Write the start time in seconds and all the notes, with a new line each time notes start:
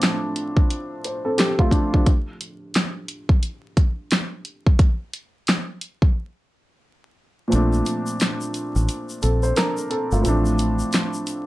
Already playing: A2 F3 A3 C4 D4 F4
0.02 snare, closed hi-hat
0.36 closed hi-hat
0.57 kick
0.70 closed hi-hat
1.04 C5, closed hi-hat
1.25 C4 A4
1.38 G4, snare, closed hi-hat
1.59 A3 F4, kick
1.71 F3 D4, kick, closed hi-hat
1.94 F3 D4, kick
2.06 kick, closed hi-hat
2.41 closed hi-hat
2.74 snare, closed hi-hat
3.08 closed hi-hat
3.29 kick
3.43 closed hi-hat
3.77 kick, closed hi-hat
4.11 snare, closed hi-hat
4.45 closed hi-hat
4.67 kick
4.79 kick, closed hi-hat
5.13 closed hi-hat
5.47 snare, closed hi-hat
5.81 closed hi-hat
6.02 kick
7.48 A#2 F3 A3
7.52 A#1 C4 D4, closed hi-hat, shaker
7.73 shaker
7.86 closed hi-hat, shaker
8.06 shaker
8.20 snare, closed hi-hat, shaker
8.41 shaker
8.54 closed hi-hat, shaker
8.76 A1, shaker
8.89 closed hi-hat, shaker
9.09 shaker
9.22 A#1 C4 A4, closed hi-hat, shaker
9.43 C5, shaker
9.56 D4 A#4, snare, closed hi-hat, shaker
9.77 shaker
9.90 C4 A4, closed hi-hat
10.12 G1 A3 F4, shaker
10.21 A2 F3 A3, closed hi-hat, shaker
10.26 A1 C4 D4
10.46 shaker
10.59 closed hi-hat, shaker
10.79 shaker
10.93 snare, closed hi-hat, shaker
11.14 shaker
11.27 closed hi-hat, shaker